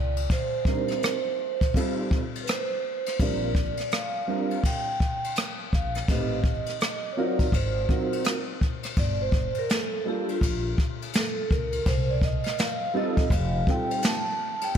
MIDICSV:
0, 0, Header, 1, 5, 480
1, 0, Start_track
1, 0, Key_signature, -2, "minor"
1, 0, Tempo, 722892
1, 199, Time_signature, 4, 2, 24, 8
1, 9811, End_track
2, 0, Start_track
2, 0, Title_t, "Vibraphone"
2, 0, Program_c, 0, 11
2, 0, Note_on_c, 0, 74, 86
2, 180, Note_off_c, 0, 74, 0
2, 215, Note_on_c, 0, 72, 82
2, 445, Note_off_c, 0, 72, 0
2, 453, Note_on_c, 0, 72, 78
2, 1139, Note_off_c, 0, 72, 0
2, 1617, Note_on_c, 0, 71, 59
2, 1645, Note_off_c, 0, 71, 0
2, 1657, Note_on_c, 0, 72, 72
2, 2139, Note_on_c, 0, 74, 90
2, 2142, Note_off_c, 0, 72, 0
2, 2582, Note_off_c, 0, 74, 0
2, 2612, Note_on_c, 0, 77, 89
2, 3059, Note_off_c, 0, 77, 0
2, 3095, Note_on_c, 0, 79, 85
2, 3540, Note_off_c, 0, 79, 0
2, 3817, Note_on_c, 0, 77, 93
2, 3921, Note_off_c, 0, 77, 0
2, 4053, Note_on_c, 0, 75, 88
2, 4733, Note_on_c, 0, 73, 59
2, 4751, Note_off_c, 0, 75, 0
2, 4764, Note_off_c, 0, 73, 0
2, 4772, Note_on_c, 0, 74, 81
2, 5012, Note_off_c, 0, 74, 0
2, 5012, Note_on_c, 0, 72, 68
2, 5459, Note_off_c, 0, 72, 0
2, 5972, Note_on_c, 0, 74, 105
2, 6118, Note_off_c, 0, 74, 0
2, 6120, Note_on_c, 0, 72, 88
2, 6361, Note_off_c, 0, 72, 0
2, 6365, Note_on_c, 0, 70, 80
2, 6450, Note_off_c, 0, 70, 0
2, 6454, Note_on_c, 0, 69, 92
2, 6693, Note_off_c, 0, 69, 0
2, 6696, Note_on_c, 0, 67, 74
2, 6826, Note_off_c, 0, 67, 0
2, 6845, Note_on_c, 0, 65, 62
2, 7060, Note_off_c, 0, 65, 0
2, 7409, Note_on_c, 0, 69, 80
2, 7648, Note_on_c, 0, 70, 74
2, 7651, Note_off_c, 0, 69, 0
2, 7886, Note_on_c, 0, 72, 95
2, 7891, Note_off_c, 0, 70, 0
2, 8035, Note_off_c, 0, 72, 0
2, 8038, Note_on_c, 0, 74, 86
2, 8127, Note_off_c, 0, 74, 0
2, 8132, Note_on_c, 0, 75, 91
2, 8349, Note_off_c, 0, 75, 0
2, 8613, Note_on_c, 0, 75, 86
2, 8851, Note_on_c, 0, 77, 93
2, 8853, Note_off_c, 0, 75, 0
2, 9092, Note_off_c, 0, 77, 0
2, 9099, Note_on_c, 0, 79, 98
2, 9313, Note_off_c, 0, 79, 0
2, 9333, Note_on_c, 0, 81, 92
2, 9721, Note_on_c, 0, 79, 103
2, 9726, Note_off_c, 0, 81, 0
2, 9808, Note_off_c, 0, 79, 0
2, 9811, End_track
3, 0, Start_track
3, 0, Title_t, "Upright piano"
3, 0, Program_c, 1, 0
3, 436, Note_on_c, 1, 55, 59
3, 439, Note_on_c, 1, 60, 57
3, 442, Note_on_c, 1, 62, 55
3, 448, Note_on_c, 1, 63, 55
3, 449, Note_on_c, 1, 70, 65
3, 736, Note_off_c, 1, 55, 0
3, 738, Note_off_c, 1, 60, 0
3, 740, Note_off_c, 1, 62, 0
3, 742, Note_off_c, 1, 63, 0
3, 743, Note_off_c, 1, 70, 0
3, 1159, Note_on_c, 1, 55, 67
3, 1162, Note_on_c, 1, 60, 62
3, 1164, Note_on_c, 1, 63, 59
3, 1166, Note_on_c, 1, 65, 63
3, 1170, Note_on_c, 1, 69, 72
3, 1458, Note_off_c, 1, 55, 0
3, 1460, Note_off_c, 1, 60, 0
3, 1461, Note_off_c, 1, 63, 0
3, 1462, Note_off_c, 1, 65, 0
3, 1464, Note_off_c, 1, 69, 0
3, 2120, Note_on_c, 1, 55, 57
3, 2123, Note_on_c, 1, 60, 55
3, 2125, Note_on_c, 1, 62, 53
3, 2128, Note_on_c, 1, 65, 55
3, 2131, Note_on_c, 1, 70, 69
3, 2304, Note_off_c, 1, 55, 0
3, 2306, Note_off_c, 1, 60, 0
3, 2307, Note_off_c, 1, 62, 0
3, 2308, Note_off_c, 1, 65, 0
3, 2310, Note_off_c, 1, 70, 0
3, 2836, Note_on_c, 1, 55, 61
3, 2838, Note_on_c, 1, 60, 55
3, 2843, Note_on_c, 1, 62, 58
3, 2845, Note_on_c, 1, 65, 59
3, 2848, Note_on_c, 1, 70, 67
3, 3023, Note_off_c, 1, 55, 0
3, 3023, Note_off_c, 1, 60, 0
3, 3026, Note_off_c, 1, 62, 0
3, 3027, Note_off_c, 1, 65, 0
3, 3028, Note_off_c, 1, 70, 0
3, 4039, Note_on_c, 1, 57, 59
3, 4041, Note_on_c, 1, 60, 55
3, 4044, Note_on_c, 1, 63, 50
3, 4049, Note_on_c, 1, 67, 57
3, 4050, Note_on_c, 1, 71, 63
3, 4224, Note_off_c, 1, 57, 0
3, 4225, Note_off_c, 1, 60, 0
3, 4226, Note_off_c, 1, 63, 0
3, 4229, Note_off_c, 1, 67, 0
3, 4229, Note_off_c, 1, 71, 0
3, 4758, Note_on_c, 1, 54, 64
3, 4759, Note_on_c, 1, 60, 58
3, 4762, Note_on_c, 1, 63, 61
3, 4765, Note_on_c, 1, 65, 58
3, 4769, Note_on_c, 1, 70, 72
3, 4943, Note_off_c, 1, 54, 0
3, 4944, Note_off_c, 1, 60, 0
3, 4945, Note_off_c, 1, 63, 0
3, 4947, Note_off_c, 1, 65, 0
3, 4949, Note_off_c, 1, 70, 0
3, 5232, Note_on_c, 1, 54, 62
3, 5234, Note_on_c, 1, 60, 54
3, 5236, Note_on_c, 1, 63, 58
3, 5241, Note_on_c, 1, 65, 53
3, 5245, Note_on_c, 1, 70, 65
3, 5535, Note_off_c, 1, 54, 0
3, 5535, Note_off_c, 1, 60, 0
3, 5537, Note_off_c, 1, 63, 0
3, 5539, Note_off_c, 1, 65, 0
3, 5541, Note_off_c, 1, 70, 0
3, 6672, Note_on_c, 1, 55, 62
3, 6677, Note_on_c, 1, 58, 58
3, 6678, Note_on_c, 1, 62, 58
3, 6682, Note_on_c, 1, 65, 55
3, 6684, Note_on_c, 1, 69, 65
3, 6861, Note_off_c, 1, 55, 0
3, 6863, Note_off_c, 1, 58, 0
3, 6863, Note_off_c, 1, 62, 0
3, 6865, Note_off_c, 1, 65, 0
3, 6867, Note_off_c, 1, 69, 0
3, 8589, Note_on_c, 1, 55, 74
3, 8591, Note_on_c, 1, 60, 67
3, 8596, Note_on_c, 1, 63, 67
3, 8598, Note_on_c, 1, 65, 65
3, 8604, Note_on_c, 1, 69, 82
3, 8779, Note_off_c, 1, 55, 0
3, 8780, Note_off_c, 1, 60, 0
3, 8783, Note_off_c, 1, 63, 0
3, 8783, Note_off_c, 1, 65, 0
3, 8786, Note_off_c, 1, 69, 0
3, 9073, Note_on_c, 1, 55, 62
3, 9076, Note_on_c, 1, 60, 57
3, 9078, Note_on_c, 1, 63, 52
3, 9082, Note_on_c, 1, 65, 60
3, 9087, Note_on_c, 1, 69, 68
3, 9375, Note_off_c, 1, 55, 0
3, 9376, Note_off_c, 1, 60, 0
3, 9378, Note_off_c, 1, 63, 0
3, 9380, Note_off_c, 1, 65, 0
3, 9382, Note_off_c, 1, 69, 0
3, 9811, End_track
4, 0, Start_track
4, 0, Title_t, "Upright bass"
4, 0, Program_c, 2, 32
4, 0, Note_on_c, 2, 37, 86
4, 163, Note_off_c, 2, 37, 0
4, 2122, Note_on_c, 2, 34, 99
4, 2447, Note_off_c, 2, 34, 0
4, 3804, Note_on_c, 2, 34, 82
4, 4004, Note_off_c, 2, 34, 0
4, 4040, Note_on_c, 2, 33, 92
4, 4366, Note_off_c, 2, 33, 0
4, 4999, Note_on_c, 2, 32, 99
4, 5200, Note_off_c, 2, 32, 0
4, 5956, Note_on_c, 2, 31, 102
4, 6284, Note_off_c, 2, 31, 0
4, 6916, Note_on_c, 2, 34, 84
4, 7119, Note_off_c, 2, 34, 0
4, 7641, Note_on_c, 2, 37, 86
4, 7842, Note_off_c, 2, 37, 0
4, 7878, Note_on_c, 2, 36, 100
4, 8204, Note_off_c, 2, 36, 0
4, 8834, Note_on_c, 2, 29, 108
4, 9037, Note_off_c, 2, 29, 0
4, 9811, End_track
5, 0, Start_track
5, 0, Title_t, "Drums"
5, 110, Note_on_c, 9, 51, 56
5, 176, Note_off_c, 9, 51, 0
5, 199, Note_on_c, 9, 36, 99
5, 200, Note_on_c, 9, 51, 70
5, 265, Note_off_c, 9, 36, 0
5, 266, Note_off_c, 9, 51, 0
5, 433, Note_on_c, 9, 36, 96
5, 499, Note_off_c, 9, 36, 0
5, 585, Note_on_c, 9, 51, 53
5, 603, Note_on_c, 9, 37, 30
5, 651, Note_off_c, 9, 51, 0
5, 670, Note_off_c, 9, 37, 0
5, 682, Note_on_c, 9, 44, 37
5, 682, Note_on_c, 9, 51, 50
5, 692, Note_on_c, 9, 37, 96
5, 748, Note_off_c, 9, 44, 0
5, 748, Note_off_c, 9, 51, 0
5, 758, Note_off_c, 9, 37, 0
5, 1071, Note_on_c, 9, 36, 77
5, 1073, Note_on_c, 9, 51, 45
5, 1137, Note_off_c, 9, 36, 0
5, 1140, Note_off_c, 9, 51, 0
5, 1158, Note_on_c, 9, 36, 80
5, 1170, Note_on_c, 9, 51, 61
5, 1224, Note_off_c, 9, 36, 0
5, 1236, Note_off_c, 9, 51, 0
5, 1402, Note_on_c, 9, 36, 88
5, 1468, Note_off_c, 9, 36, 0
5, 1563, Note_on_c, 9, 51, 55
5, 1630, Note_off_c, 9, 51, 0
5, 1641, Note_on_c, 9, 44, 44
5, 1641, Note_on_c, 9, 51, 62
5, 1656, Note_on_c, 9, 37, 106
5, 1707, Note_off_c, 9, 44, 0
5, 1707, Note_off_c, 9, 51, 0
5, 1722, Note_off_c, 9, 37, 0
5, 2033, Note_on_c, 9, 51, 56
5, 2045, Note_on_c, 9, 37, 33
5, 2100, Note_off_c, 9, 51, 0
5, 2112, Note_off_c, 9, 37, 0
5, 2121, Note_on_c, 9, 51, 70
5, 2122, Note_on_c, 9, 36, 103
5, 2187, Note_off_c, 9, 51, 0
5, 2188, Note_off_c, 9, 36, 0
5, 2356, Note_on_c, 9, 36, 96
5, 2422, Note_off_c, 9, 36, 0
5, 2505, Note_on_c, 9, 51, 54
5, 2523, Note_on_c, 9, 37, 29
5, 2571, Note_off_c, 9, 51, 0
5, 2590, Note_off_c, 9, 37, 0
5, 2599, Note_on_c, 9, 44, 38
5, 2599, Note_on_c, 9, 51, 52
5, 2609, Note_on_c, 9, 37, 90
5, 2665, Note_off_c, 9, 44, 0
5, 2665, Note_off_c, 9, 51, 0
5, 2676, Note_off_c, 9, 37, 0
5, 2993, Note_on_c, 9, 51, 46
5, 3060, Note_off_c, 9, 51, 0
5, 3078, Note_on_c, 9, 36, 79
5, 3088, Note_on_c, 9, 51, 66
5, 3144, Note_off_c, 9, 36, 0
5, 3154, Note_off_c, 9, 51, 0
5, 3322, Note_on_c, 9, 36, 84
5, 3389, Note_off_c, 9, 36, 0
5, 3481, Note_on_c, 9, 51, 53
5, 3547, Note_off_c, 9, 51, 0
5, 3558, Note_on_c, 9, 44, 44
5, 3558, Note_on_c, 9, 51, 60
5, 3573, Note_on_c, 9, 37, 113
5, 3624, Note_off_c, 9, 44, 0
5, 3624, Note_off_c, 9, 51, 0
5, 3639, Note_off_c, 9, 37, 0
5, 3804, Note_on_c, 9, 36, 76
5, 3870, Note_off_c, 9, 36, 0
5, 3950, Note_on_c, 9, 51, 54
5, 3961, Note_on_c, 9, 37, 33
5, 4016, Note_off_c, 9, 51, 0
5, 4028, Note_off_c, 9, 37, 0
5, 4039, Note_on_c, 9, 51, 68
5, 4040, Note_on_c, 9, 36, 106
5, 4105, Note_off_c, 9, 51, 0
5, 4106, Note_off_c, 9, 36, 0
5, 4274, Note_on_c, 9, 36, 93
5, 4340, Note_off_c, 9, 36, 0
5, 4424, Note_on_c, 9, 51, 55
5, 4442, Note_on_c, 9, 37, 30
5, 4490, Note_off_c, 9, 51, 0
5, 4509, Note_off_c, 9, 37, 0
5, 4519, Note_on_c, 9, 44, 38
5, 4519, Note_on_c, 9, 51, 55
5, 4529, Note_on_c, 9, 37, 94
5, 4585, Note_off_c, 9, 44, 0
5, 4585, Note_off_c, 9, 51, 0
5, 4595, Note_off_c, 9, 37, 0
5, 4909, Note_on_c, 9, 36, 82
5, 4910, Note_on_c, 9, 51, 49
5, 4975, Note_off_c, 9, 36, 0
5, 4976, Note_off_c, 9, 51, 0
5, 4995, Note_on_c, 9, 36, 77
5, 5005, Note_on_c, 9, 51, 65
5, 5062, Note_off_c, 9, 36, 0
5, 5071, Note_off_c, 9, 51, 0
5, 5239, Note_on_c, 9, 36, 81
5, 5305, Note_off_c, 9, 36, 0
5, 5397, Note_on_c, 9, 51, 54
5, 5463, Note_off_c, 9, 51, 0
5, 5473, Note_on_c, 9, 44, 41
5, 5473, Note_on_c, 9, 51, 64
5, 5488, Note_on_c, 9, 37, 107
5, 5539, Note_off_c, 9, 44, 0
5, 5539, Note_off_c, 9, 51, 0
5, 5554, Note_off_c, 9, 37, 0
5, 5720, Note_on_c, 9, 36, 74
5, 5786, Note_off_c, 9, 36, 0
5, 5864, Note_on_c, 9, 51, 59
5, 5876, Note_on_c, 9, 37, 34
5, 5931, Note_off_c, 9, 51, 0
5, 5942, Note_off_c, 9, 37, 0
5, 5952, Note_on_c, 9, 51, 71
5, 5956, Note_on_c, 9, 36, 107
5, 6018, Note_off_c, 9, 51, 0
5, 6022, Note_off_c, 9, 36, 0
5, 6190, Note_on_c, 9, 36, 95
5, 6257, Note_off_c, 9, 36, 0
5, 6338, Note_on_c, 9, 51, 52
5, 6404, Note_off_c, 9, 51, 0
5, 6436, Note_on_c, 9, 44, 40
5, 6436, Note_on_c, 9, 51, 50
5, 6446, Note_on_c, 9, 38, 101
5, 6503, Note_off_c, 9, 44, 0
5, 6503, Note_off_c, 9, 51, 0
5, 6513, Note_off_c, 9, 38, 0
5, 6830, Note_on_c, 9, 51, 51
5, 6896, Note_off_c, 9, 51, 0
5, 6914, Note_on_c, 9, 36, 77
5, 6924, Note_on_c, 9, 51, 66
5, 6981, Note_off_c, 9, 36, 0
5, 6990, Note_off_c, 9, 51, 0
5, 7159, Note_on_c, 9, 36, 91
5, 7225, Note_off_c, 9, 36, 0
5, 7318, Note_on_c, 9, 51, 53
5, 7384, Note_off_c, 9, 51, 0
5, 7392, Note_on_c, 9, 44, 42
5, 7392, Note_on_c, 9, 51, 64
5, 7407, Note_on_c, 9, 38, 116
5, 7458, Note_off_c, 9, 44, 0
5, 7458, Note_off_c, 9, 51, 0
5, 7473, Note_off_c, 9, 38, 0
5, 7640, Note_on_c, 9, 36, 81
5, 7707, Note_off_c, 9, 36, 0
5, 7785, Note_on_c, 9, 51, 54
5, 7851, Note_off_c, 9, 51, 0
5, 7874, Note_on_c, 9, 51, 69
5, 7876, Note_on_c, 9, 36, 107
5, 7940, Note_off_c, 9, 51, 0
5, 7943, Note_off_c, 9, 36, 0
5, 8111, Note_on_c, 9, 36, 97
5, 8177, Note_off_c, 9, 36, 0
5, 8258, Note_on_c, 9, 51, 56
5, 8276, Note_on_c, 9, 38, 31
5, 8324, Note_off_c, 9, 51, 0
5, 8343, Note_off_c, 9, 38, 0
5, 8355, Note_on_c, 9, 44, 40
5, 8355, Note_on_c, 9, 51, 58
5, 8366, Note_on_c, 9, 38, 102
5, 8422, Note_off_c, 9, 44, 0
5, 8422, Note_off_c, 9, 51, 0
5, 8432, Note_off_c, 9, 38, 0
5, 8745, Note_on_c, 9, 51, 48
5, 8746, Note_on_c, 9, 36, 84
5, 8812, Note_off_c, 9, 51, 0
5, 8813, Note_off_c, 9, 36, 0
5, 8833, Note_on_c, 9, 36, 83
5, 8841, Note_on_c, 9, 51, 62
5, 8899, Note_off_c, 9, 36, 0
5, 8907, Note_off_c, 9, 51, 0
5, 9077, Note_on_c, 9, 36, 85
5, 9143, Note_off_c, 9, 36, 0
5, 9235, Note_on_c, 9, 51, 56
5, 9301, Note_off_c, 9, 51, 0
5, 9313, Note_on_c, 9, 44, 45
5, 9313, Note_on_c, 9, 51, 66
5, 9328, Note_on_c, 9, 38, 118
5, 9379, Note_off_c, 9, 44, 0
5, 9379, Note_off_c, 9, 51, 0
5, 9394, Note_off_c, 9, 38, 0
5, 9703, Note_on_c, 9, 51, 60
5, 9769, Note_off_c, 9, 51, 0
5, 9811, End_track
0, 0, End_of_file